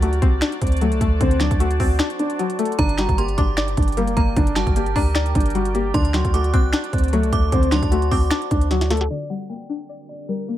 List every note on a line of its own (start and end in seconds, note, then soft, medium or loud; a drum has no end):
0.00 0.21 D2 loud
0.00 0.62 D3 medium
0.00 0.80 F#3 medium
0.00 1.00 A3 medium
0.00 2.75 F#4 medium
0.00 0.58 F#4 medium
0.00 2.75 C5 medium
0.00 5.90 D5 medium
0.00 2.75 A5 medium
0.00 closed hi-hat medium
0.13 closed hi-hat medium
0.22 0.41 C2 loud
0.22 1.21 C4 loud
0.22 kick loud
0.22 closed hi-hat medium
0.41 1.41 D4 medium
0.41 finger snap loud
0.41 snare loud
0.41 closed hi-hat medium
0.52 closed hi-hat medium
0.61 0.93 D2 loud
0.61 0.76 C4 medium
0.61 kick loud
0.61 closed hi-hat medium
0.67 closed hi-hat medium
0.72 closed hi-hat medium
0.77 closed hi-hat soft
0.81 1.39 F#3 medium
0.81 1.18 A3 medium
0.81 closed hi-hat medium
0.92 1.00 C2 loud
0.92 closed hi-hat medium
1.01 1.20 D2 loud
1.01 1.59 A3 medium
1.01 kick loud
1.01 closed hi-hat medium
1.21 1.50 D2 loud
1.21 2.19 D3 medium
1.21 1.36 C4 loud
1.21 kick loud
1.21 closed hi-hat medium
1.31 closed hi-hat medium
1.40 2.38 F#3 medium
1.40 1.56 D4 medium
1.40 finger snap medium
1.40 snare loud
1.40 closed hi-hat medium
1.51 1.79 D2 loud
1.51 kick loud
1.51 closed hi-hat medium
1.60 2.58 A3 medium
1.60 2.16 F#4 medium
1.60 closed hi-hat medium
1.71 closed hi-hat medium
1.80 2.00 D2 loud
1.80 2.79 C4 loud
1.80 kick loud
1.80 open hi-hat medium
1.99 2.79 D4 medium
1.99 finger snap loud
1.99 snare loud
1.99 closed hi-hat medium
2.10 closed hi-hat medium
2.19 2.35 D4 medium
2.19 closed hi-hat medium
2.30 closed hi-hat medium
2.39 2.79 F#3 medium
2.39 2.54 F#4 medium
2.39 closed hi-hat medium
2.50 closed hi-hat medium
2.59 2.79 A3 medium
2.59 2.74 A4 medium
2.59 closed hi-hat medium
2.65 closed hi-hat medium
2.72 closed hi-hat soft
2.79 3.08 G1 loud
2.79 3.77 D3 medium
2.79 2.94 D4 loud
2.79 5.91 G4 medium
2.79 5.91 A#4 medium
2.79 5.91 G5 medium
2.79 3.16 A#5 loud
2.79 kick loud
2.79 closed hi-hat medium
2.89 closed hi-hat medium
2.98 3.96 G3 medium
2.98 3.13 F#4 medium
2.98 finger snap medium
2.98 snare loud
2.98 closed hi-hat medium
3.09 3.37 G1 loud
3.09 kick loud
3.09 closed hi-hat medium
3.18 4.16 A#3 medium
3.18 3.74 G4 medium
3.18 3.37 C6 medium
3.18 closed hi-hat medium
3.28 closed hi-hat medium
3.38 3.76 G1 loud
3.38 4.37 D4 loud
3.38 4.13 D6 medium
3.38 kick loud
3.38 closed hi-hat medium
3.57 4.56 D5 medium
3.57 finger snap loud
3.57 snare loud
3.57 closed hi-hat medium
3.68 closed hi-hat medium
3.77 4.09 G1 loud
3.77 3.92 D4 medium
3.77 kick loud
3.77 closed hi-hat medium
3.83 closed hi-hat medium
3.88 closed hi-hat medium
3.92 closed hi-hat soft
3.97 4.55 G3 loud
3.97 4.34 A#3 medium
3.97 closed hi-hat medium
4.07 4.16 F#1 loud
4.07 closed hi-hat medium
4.17 4.36 G1 loud
4.17 4.75 A#3 medium
4.17 4.35 A#5 medium
4.17 kick loud
4.17 closed hi-hat medium
4.36 4.66 G1 loud
4.36 5.35 D3 medium
4.36 4.52 D4 loud
4.36 kick loud
4.36 closed hi-hat medium
4.47 closed hi-hat medium
4.55 5.54 G3 medium
4.55 4.71 F#4 medium
4.55 4.93 A5 medium
4.55 finger snap medium
4.55 snare loud
4.55 closed hi-hat medium
4.67 4.95 G1 loud
4.67 kick medium
4.67 closed hi-hat medium
4.76 5.73 A#3 medium
4.76 5.32 G4 medium
4.76 closed hi-hat medium
4.86 closed hi-hat medium
4.96 5.34 D2 loud
4.96 5.94 D4 loud
4.96 5.90 A#5 medium
4.96 kick medium
4.96 open hi-hat medium
5.15 5.94 D5 medium
5.15 finger snap loud
5.15 snare loud
5.15 closed hi-hat medium
5.26 closed hi-hat medium
5.35 5.92 G1 loud
5.35 5.51 D4 medium
5.35 kick loud
5.35 closed hi-hat medium
5.40 closed hi-hat medium
5.46 closed hi-hat medium
5.50 closed hi-hat soft
5.55 5.94 G3 loud
5.55 5.70 F#4 medium
5.55 closed hi-hat medium
5.65 closed hi-hat medium
5.74 5.94 A#3 medium
5.74 5.90 G4 medium
5.74 closed hi-hat medium
5.94 6.23 D2 loud
5.94 6.93 D3 medium
5.94 6.09 D4 loud
5.94 9.07 F#4 medium
5.94 9.07 C5 medium
5.94 9.07 D5 medium
5.94 9.07 A5 medium
5.94 6.31 C6 loud
5.94 kick loud
5.94 closed hi-hat medium
6.05 closed hi-hat medium
6.13 7.12 F#3 medium
6.13 6.29 F#4 medium
6.13 finger snap medium
6.13 snare loud
6.13 closed hi-hat medium
6.25 6.52 D2 loud
6.25 kick loud
6.25 closed hi-hat medium
6.34 7.32 A3 medium
6.34 6.89 F#4 loud
6.34 6.53 D6 medium
6.34 closed hi-hat medium
6.44 closed hi-hat medium
6.54 6.73 C2 loud
6.54 7.52 C4 loud
6.54 7.29 F#6 medium
6.54 kick loud
6.54 closed hi-hat medium
6.73 7.72 D4 medium
6.73 finger snap loud
6.73 snare loud
6.73 closed hi-hat medium
6.84 closed hi-hat medium
6.93 7.25 D2 loud
6.93 7.08 C4 medium
6.93 kick loud
6.93 closed hi-hat medium
6.98 closed hi-hat medium
7.04 closed hi-hat medium
7.08 closed hi-hat soft
7.13 7.71 F#3 medium
7.13 7.50 A3 medium
7.13 closed hi-hat medium
7.23 7.32 C2 loud
7.23 closed hi-hat medium
7.33 7.51 D2 loud
7.33 7.91 A3 medium
7.33 7.51 D6 medium
7.33 kick loud
7.33 closed hi-hat medium
7.52 7.81 D2 loud
7.52 8.51 D3 medium
7.52 7.68 C4 loud
7.52 kick loud
7.52 closed hi-hat medium
7.63 closed hi-hat medium
7.71 8.70 F#3 medium
7.71 7.87 D4 medium
7.71 8.09 C6 medium
7.71 finger snap medium
7.71 snare loud
7.71 closed hi-hat medium
7.82 8.10 D2 loud
7.82 kick loud
7.82 closed hi-hat medium
7.91 8.89 A3 medium
7.91 8.47 F#4 medium
7.91 closed hi-hat medium
8.02 closed hi-hat medium
8.11 8.30 D2 loud
8.11 9.10 C4 loud
8.11 8.67 D6 medium
8.11 kick loud
8.11 open hi-hat medium
8.30 9.10 D4 medium
8.30 finger snap loud
8.30 snare loud
8.30 closed hi-hat medium
8.42 closed hi-hat medium
8.51 9.08 D2 loud
8.51 8.66 D4 medium
8.51 kick loud
8.51 closed hi-hat medium
8.61 closed hi-hat medium
8.71 9.10 F#3 medium
8.71 8.86 F#4 medium
8.71 snare medium
8.71 closed hi-hat medium
8.81 snare medium
8.81 closed hi-hat medium
8.90 9.10 A3 medium
8.90 9.06 A4 medium
8.90 snare loud
8.90 closed hi-hat medium
8.97 snare loud
8.97 closed hi-hat medium
9.04 closed hi-hat soft
9.10 10.09 D3 medium
9.10 10.58 D4 medium
9.10 10.58 G4 medium
9.10 10.58 A#4 medium
9.10 9.26 D5 loud
9.10 10.58 G5 medium
9.30 10.27 G3 medium
9.30 9.45 F#5 medium
9.49 10.47 A#3 medium
9.49 10.05 G5 medium
9.70 10.58 D4 medium
9.89 10.58 D5 medium
10.09 10.24 D5 medium
10.28 10.58 G3 loud
10.28 10.58 A#4 medium
10.48 10.58 A#3 medium